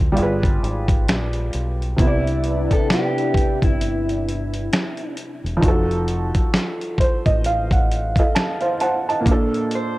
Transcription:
0.00 0.19 D2 medium
0.00 0.11 D3 medium
0.00 0.13 C4 medium
0.00 0.14 F4 medium
0.00 0.16 E5 medium
0.12 1.93 G3 medium
0.12 1.94 F4 medium
0.17 0.59 G1 loud
0.17 1.96 G#4 medium
0.17 closed hi-hat medium
0.23 1.98 B4 medium
0.43 kick loud
0.43 closed hi-hat soft
0.63 1.04 G#1 medium
0.63 closed hi-hat medium
0.88 kick loud
0.88 closed hi-hat medium
1.08 1.50 A#1 medium
1.08 finger snap medium
1.08 snare loud
1.08 closed hi-hat medium
1.33 closed hi-hat soft
1.53 1.95 B1 medium
1.53 closed hi-hat medium
1.82 closed hi-hat soft
1.96 2.67 C2 loud
1.96 5.57 C3 medium
1.96 5.59 C3 medium
1.96 5.59 B3 medium
1.96 5.59 D4 medium
1.96 5.59 E4 medium
1.96 2.74 E4 loud
1.96 kick loud
1.96 closed hi-hat medium
2.03 5.61 E4 medium
2.03 5.63 D5 medium
2.27 closed hi-hat soft
2.44 closed hi-hat medium
2.71 2.91 A4 loud
2.71 kick medium
2.71 closed hi-hat medium
2.90 3.59 G4 loud
2.90 finger snap medium
2.90 snare loud
2.90 closed hi-hat medium
3.18 closed hi-hat soft
3.34 kick medium
3.34 closed hi-hat medium
3.62 4.68 G1 medium
3.62 5.14 E4 medium
3.62 kick medium
3.62 closed hi-hat soft
3.81 closed hi-hat medium
4.09 closed hi-hat soft
4.28 closed hi-hat medium
4.53 closed hi-hat medium
4.73 finger snap medium
4.73 snare loud
4.73 closed hi-hat medium
4.97 closed hi-hat soft
5.17 closed hi-hat medium
5.44 5.61 E1 medium
5.44 closed hi-hat soft
5.57 9.19 F3 medium
5.57 9.21 D#4 medium
5.62 6.31 F1 loud
5.62 9.23 F#4 medium
5.62 kick loud
5.62 closed hi-hat medium
5.68 7.88 A4 medium
5.91 closed hi-hat soft
6.08 closed hi-hat medium
6.35 kick medium
6.35 closed hi-hat medium
6.54 finger snap medium
6.54 snare loud
6.54 closed hi-hat medium
6.81 closed hi-hat soft
6.98 7.24 C5 medium
6.98 kick medium
6.98 closed hi-hat medium
7.26 8.13 A1 medium
7.26 7.43 D#5 medium
7.26 kick medium
7.26 closed hi-hat soft
7.44 7.70 F5 medium
7.44 closed hi-hat medium
7.71 7.89 F#5 medium
7.71 kick medium
7.71 closed hi-hat soft
7.92 closed hi-hat medium
8.16 8.61 A4 medium
8.16 8.61 D#5 medium
8.16 8.35 F5 medium
8.16 kick loud
8.16 closed hi-hat medium
8.35 8.77 A5 medium
8.35 finger snap medium
8.35 snare loud
8.35 closed hi-hat medium
8.61 8.80 C5 medium
8.61 8.79 F5 medium
8.61 closed hi-hat soft
8.80 9.06 C5 medium
8.80 9.06 F#5 medium
8.80 9.07 A5 medium
8.80 closed hi-hat medium
9.09 9.52 D#5 medium
9.09 9.51 A5 medium
9.09 closed hi-hat soft
9.21 9.98 A#2 medium
9.21 9.98 A#3 medium
9.26 9.98 D4 medium
9.26 kick loud
9.26 closed hi-hat medium
9.32 9.98 A4 medium
9.55 closed hi-hat soft
9.71 9.98 C5 medium
9.71 closed hi-hat medium

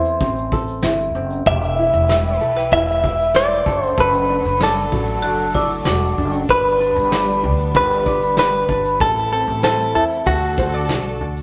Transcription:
0.00 0.18 E2 medium
0.00 0.20 C4 medium
0.00 0.83 E4 medium
0.00 0.51 A4 medium
0.00 1.12 C5 loud
0.00 1.46 C5 medium
0.05 shaker soft
0.21 0.79 A1 loud
0.21 1.14 C4 medium
0.21 kick medium
0.21 shaker medium
0.36 shaker medium
0.52 1.53 A4 medium
0.52 kick loud
0.67 shaker soft
0.82 1.12 G1 loud
0.82 1.79 E4 medium
0.82 snare loud
0.82 shaker medium
0.99 shaker medium
1.15 1.44 F#1 medium
1.15 1.53 C4 medium
1.30 shaker medium
1.46 1.90 E1 loud
1.46 3.64 E3 medium
1.46 3.64 E4 medium
1.46 3.66 G4 medium
1.46 3.64 G4 medium
1.46 3.64 B4 medium
1.46 2.37 E5 loud
1.46 kick loud
1.46 shaker medium
1.62 shaker medium
1.79 2.71 E4 medium
1.94 2.37 E1 loud
1.94 shaker medium
2.09 3.02 E5 medium
2.09 snare loud
2.09 shaker medium
2.26 shaker medium
2.40 2.69 B1 medium
2.40 2.56 A4 medium
2.40 shaker medium
2.56 3.34 B4 medium
2.56 snare soft
2.56 shaker medium
2.72 3.62 E1 medium
2.72 3.72 E4 medium
2.72 3.36 E5 loud
2.72 kick loud
2.72 shaker medium
2.88 shaker medium
3.03 3.72 E5 medium
3.03 kick loud
3.03 shaker medium
3.19 shaker medium
3.34 3.73 B4 medium
3.34 3.85 D5 loud
3.34 snare loud
3.34 shaker medium
3.51 shaker medium
3.66 3.95 F#1 medium
3.66 6.46 F#3 medium
3.66 6.46 A3 medium
3.66 8.97 D4 medium
3.66 3.96 A4 medium
3.66 kick loud
3.66 shaker soft
3.82 4.00 C5 loud
3.82 shaker soft
3.97 4.41 F#1 loud
3.97 6.49 A4 medium
3.97 4.63 B4 loud
3.97 kick loud
3.97 shaker medium
4.14 shaker medium
4.30 5.23 D4 medium
4.45 4.92 F#1 loud
4.45 shaker medium
4.60 6.15 A4 medium
4.60 5.54 D5 medium
4.60 snare loud
4.60 shaker medium
4.77 shaker medium
4.92 5.24 A1 medium
4.92 5.85 F#4 medium
4.92 kick medium
4.92 shaker medium
5.07 shaker soft
5.22 5.82 F#1 loud
5.22 6.17 D4 medium
5.22 5.55 F#4 loud
5.22 shaker medium
5.39 shaker medium
5.54 5.69 E4 medium
5.54 7.11 D5 medium
5.54 kick loud
5.70 shaker medium
5.85 6.15 E1 medium
5.85 6.30 D4 medium
5.85 6.55 F#4 medium
5.85 snare loud
5.85 shaker medium
6.02 shaker medium
6.18 6.47 F#1 loud
6.18 6.80 D4 medium
6.18 shaker soft
6.33 shaker soft
6.49 6.92 G1 loud
6.49 8.98 G3 medium
6.49 8.98 B3 medium
6.49 9.00 B4 medium
6.49 7.75 B4 loud
6.49 kick loud
6.49 shaker medium
6.65 shaker medium
6.80 7.73 D4 medium
6.80 shaker medium
6.96 7.45 G1 loud
6.96 shaker medium
7.12 8.05 D5 medium
7.12 snare loud
7.12 shaker loud
7.28 shaker medium
7.43 7.72 D2 loud
7.43 8.36 G4 medium
7.59 shaker medium
7.74 8.65 G1 loud
7.74 8.68 D4 medium
7.74 8.35 B4 loud
7.74 kick loud
7.74 shaker medium
7.91 shaker medium
8.06 9.07 D5 medium
8.06 kick loud
8.22 shaker medium
8.37 9.06 G4 medium
8.37 9.01 B4 loud
8.37 snare loud
8.37 shaker medium
8.54 shaker medium
8.69 8.98 G1 medium
8.69 9.07 D4 medium
8.69 kick medium
8.85 shaker soft
9.00 9.44 A1 loud
9.00 10.25 A3 medium
9.00 10.25 C4 medium
9.00 10.25 E4 medium
9.00 10.25 A4 medium
9.00 9.31 A4 loud
9.00 kick loud
9.00 shaker medium
9.17 shaker medium
9.32 10.33 C4 medium
9.32 9.63 A4 medium
9.32 shaker medium
9.47 9.91 A1 loud
9.47 shaker medium
9.63 9.94 A4 loud
9.63 10.33 C5 medium
9.63 snare loud
9.63 shaker medium
9.80 shaker medium
9.94 10.24 E2 medium
9.94 10.32 E4 medium
9.94 10.04 A4 medium
9.94 shaker medium
10.10 shaker soft
10.26 10.85 D2 loud
10.26 11.42 D3 medium
10.26 11.42 D4 medium
10.26 11.42 F#4 medium
10.26 10.86 F#4 medium
10.26 11.42 A4 medium
10.26 kick loud
10.26 shaker medium
10.43 shaker medium
10.57 10.74 C5 medium
10.57 kick loud
10.57 shaker medium
10.73 11.42 D5 medium
10.73 shaker medium
10.89 11.18 B1 medium
10.89 11.42 F#4 medium
10.89 snare loud
10.89 shaker medium
11.06 shaker medium
11.21 11.42 D2 medium
11.21 11.42 D4 medium
11.37 shaker soft

